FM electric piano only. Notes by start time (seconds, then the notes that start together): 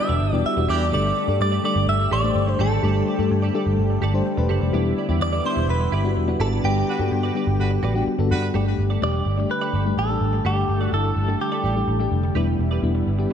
Already playing: G3 B3 D4 E4 F#4 G4
0.33 G3 B3 D4 E4 G4
0.57 G3 B3 D4 E4 F#4
0.92 G3 A3 D4 G4 A4
1.28 G3 A3 D4 G4 A4
1.64 G3 A3 D4 G4 A4
2.23 G3 A3 D4 G4 C5
2.47 G3 A3 D4 G4 C5
2.83 G3 A3 D4 G4 A4
3.18 G3 A3 D4 G4 A4
3.54 G3 A3 D4 G4 A4
4.02 A5
4.13 G3 A3 D4 G4 C5
4.26 G5
4.37 G3 A3 D4 G4 B4
4.73 G3 B3 D4 E4 G4
5.08 G3 B3 D4 E4 G4
5.44 G3 B3 D4 E4 G4
6.04 G3 B3 D4 E4 F#4
6.28 G3 B3 D4 E4 F#4
6.63 G3 B3 D4 F#4 G4
6.99 G3 B3 D4 F#4 A4
7.35 G3 B3 D4 G4
7.94 G3 B3 D4 F#4 G4
8.18 G3 B3 D4 F#4 A4
8.54 G3 A3 D4 G4
9.02 G3 A3 D4 G4
9.37 G3 A3 D4 G4
9.85 G3 A3 D4 G4
10.09 G3 A3 D4 G4
10.45 G3 A3 D4 G4
10.92 G3 A3 D4 E4
11.28 G3 A3 D4 G4
11.75 G3 A3 D4 G4
11.99 G3 A3 D4 G4
12.35 G3 B3 D4 E4
12.83 G3 B3 D4 E4
13.18 G3 B3 D4 G4